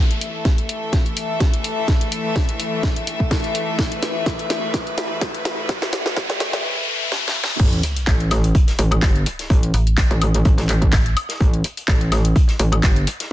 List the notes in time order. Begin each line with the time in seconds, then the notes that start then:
Already playing: E3 A3 A4 E5, riser
0.11 closed hi-hat
0.21 open hi-hat
0.45 kick, snare, closed hi-hat
0.58 closed hi-hat
0.69 open hi-hat
0.93 kick, snare, closed hi-hat
1.06 closed hi-hat
1.17 open hi-hat
1.40 kick, snare, closed hi-hat
1.54 closed hi-hat
1.64 open hi-hat
1.88 kick, snare, closed hi-hat
2.01 closed hi-hat
2.12 open hi-hat
2.36 kick, snare, closed hi-hat
2.49 closed hi-hat
2.60 open hi-hat
2.83 kick, snare, closed hi-hat
2.96 closed hi-hat
3.07 open hi-hat
3.20 kick
3.31 kick, snare, closed hi-hat
3.44 closed hi-hat
3.55 open hi-hat
3.78 B4, kick, snare, closed hi-hat
3.92 closed hi-hat
4.03 snare, open hi-hat
4.26 kick, snare, closed hi-hat
4.39 closed hi-hat
4.50 snare, open hi-hat
4.74 kick, snare, closed hi-hat
4.87 closed hi-hat
4.98 snare, open hi-hat
5.21 kick, snare, closed hi-hat
5.35 closed hi-hat
5.45 snare, open hi-hat
5.69 kick, snare, closed hi-hat
5.82 snare, closed hi-hat
5.93 snare, open hi-hat
6.06 snare
6.17 kick, snare, closed hi-hat
6.30 snare, closed hi-hat
6.40 snare, open hi-hat
6.53 snare, closed hi-hat
7.12 snare
7.28 snare
7.44 snare
7.59 A1, kick, closed hi-hat, crash, sub drop
7.73 closed hi-hat
7.83 closed hi-hat, open hi-hat
7.96 closed hi-hat
8.07 A1, kick, snare, clap, closed hi-hat
8.20 closed hi-hat
8.31 snare, closed hi-hat, open hi-hat, high woodblock
8.44 closed hi-hat
8.55 kick, closed hi-hat
8.68 snare, closed hi-hat
8.79 A1, closed hi-hat, open hi-hat
8.92 closed hi-hat, high woodblock
9.02 G1, kick, snare, clap, closed hi-hat
9.16 closed hi-hat
9.26 closed hi-hat, open hi-hat
9.39 snare, closed hi-hat
9.50 A1, kick, closed hi-hat
9.63 closed hi-hat
9.74 A1, closed hi-hat, open hi-hat
9.87 closed hi-hat
9.98 kick, snare, clap, closed hi-hat
10.11 A1, closed hi-hat
10.22 closed hi-hat, open hi-hat, high woodblock
10.34 closed hi-hat
10.45 A1, kick, closed hi-hat
10.58 snare, closed hi-hat
10.69 clap, closed hi-hat, open hi-hat
10.82 kick, closed hi-hat
10.92 A1, kick, snare, clap, closed hi-hat
11.06 closed hi-hat
11.17 closed hi-hat, open hi-hat, high woodblock
11.29 snare, closed hi-hat
11.41 A1, kick, closed hi-hat
11.54 closed hi-hat
11.64 closed hi-hat, open hi-hat
11.77 closed hi-hat
11.88 A1, kick, snare, clap, closed hi-hat
12.01 closed hi-hat
12.12 snare, closed hi-hat, open hi-hat, high woodblock
12.24 closed hi-hat
12.36 kick, closed hi-hat
12.48 snare, closed hi-hat
12.59 A1, closed hi-hat, open hi-hat
12.73 closed hi-hat, high woodblock
12.83 G1, kick, snare, clap, closed hi-hat
12.96 closed hi-hat
13.07 closed hi-hat, open hi-hat
13.20 snare, closed hi-hat